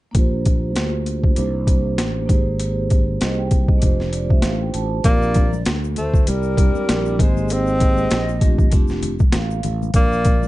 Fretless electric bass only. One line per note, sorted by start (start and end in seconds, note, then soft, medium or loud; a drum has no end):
0.15 0.77 A#1 medium
0.77 1.35 D2 medium
1.38 1.99 C2 loud
1.99 2.28 A1 medium
2.29 3.17 G#1 medium
3.22 3.80 C2 medium
3.83 4.41 F1 medium
4.44 4.73 A1 medium
4.74 5.03 A1 medium
5.04 5.63 A#1 medium
5.67 6.25 D2 medium
6.28 6.73 C2 loud
6.76 muted fretless electric bass stroke soft
6.89 7.18 A#1 medium
7.20 8.07 G#1 medium
8.12 8.73 A#1 medium
8.73 9.31 F1 medium
9.35 9.63 A1 medium
9.64 9.93 A1 medium
9.94 10.48 A#1 loud